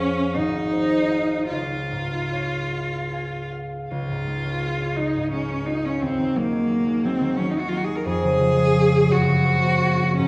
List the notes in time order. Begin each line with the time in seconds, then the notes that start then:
Already playing: F2 C#4 G#4
0.00 F5 G#5
0.34 G#1 D#4
0.72 C5
1.11 F5 A#5
1.49 C#2 F4
1.92 G#2
2.33 C#5
2.72 F5
3.12 G#5
3.53 F5
3.90 C#2 F4
4.10 G#2
4.27 G#3
4.45 C#4
4.64 F4
4.80 C#4
4.96 G#3 D#4
5.16 G#2
5.31 G#3 C#4
5.50 C#4
5.66 D#4 F4
5.84 C#4
6.01 D#2 C4
6.18 D#3
6.35 F#3 A#3
6.52 G#3
6.70 D#4
6.87 G#3
7.04 F#3 C4
7.21 D#3
7.36 F#3 C#4
7.50 D#4
7.54 G#3
7.59 F#4
7.68 D#4 F4
7.77 F#4
7.84 G#3 G#4
7.95 A#4
8.05 F2 G#4
8.24 C#3
8.40 F3
8.57 G#3
8.75 C#4
8.92 F4
9.09 F#2 F#4
9.28 C#3
9.45 F3
9.63 A#3
9.80 C#4
9.99 F4
10.17 G#2 C#4